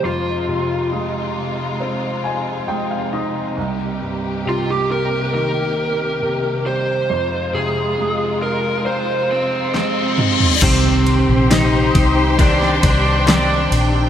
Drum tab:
CC |----------------|----------------|----------------|x---------------|
RD |----------------|----------------|----------------|x-x-x-x-x-x-x-x-|
SD |----------------|----------------|------------o---|----o----o--o---|
T2 |----------------|----------------|--------------o-|----------------|
FT |----------------|----------------|---------------o|----------------|
BD |----------------|----------------|----------------|o-----o-o-o-----|